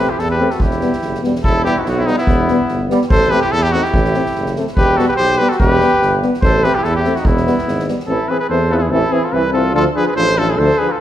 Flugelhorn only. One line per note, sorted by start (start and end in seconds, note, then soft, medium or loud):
0.00 0.13 G4 medium
0.11 0.20 E4 medium
0.20 0.31 E4 medium
0.31 0.55 G4 medium
0.54 0.63 F#4 medium
0.62 1.24 E4 medium
1.44 1.64 E4 medium
1.66 1.79 E4 loud
1.78 1.81 C4 medium
1.78 1.88 C4 medium
1.78 1.83 D#4 medium
1.86 1.99 B3 medium
1.97 2.09 C4 medium
2.07 2.19 B3 medium
2.20 2.87 B3 medium
3.11 3.33 A4 loud
3.31 3.43 G4 medium
3.44 3.53 E4 medium
3.53 3.63 E4 medium
3.63 3.75 E4 medium
3.73 3.85 D#4 medium
3.84 4.55 E4 medium
4.78 5.00 G4 loud
4.98 5.09 F#4 loud
5.09 5.13 G4 medium
5.18 5.40 G4 loud
5.40 5.53 G4 medium
5.52 5.60 F#4 medium
5.61 6.18 G4 loud
6.45 6.66 A4 loud
6.65 6.79 G4 medium
6.78 6.87 E4 medium
6.87 6.96 E4 medium
6.97 7.21 E4 medium
7.19 7.30 D#4 medium
7.29 7.89 B3 medium
8.10 8.32 E4 medium
8.31 8.41 G#4 medium
8.42 8.49 G#4 medium
8.49 8.72 A4 medium
8.70 8.74 F4 medium
8.70 8.77 G#4 medium
8.76 8.84 F4 medium
8.82 8.92 E4 medium
8.92 9.13 E4 medium
9.13 9.26 E4 medium
9.25 9.36 F4 medium
9.34 9.54 E4 medium
9.54 9.74 F4 medium
9.75 9.85 F4 loud
9.96 10.06 G#4 medium
10.06 10.15 G#4 medium
10.16 10.38 A4 medium
10.36 10.49 F4 medium
10.48 10.58 E4 medium
10.56 10.80 A4 loud
10.79 10.91 G#4 loud
10.90 10.99 F4 medium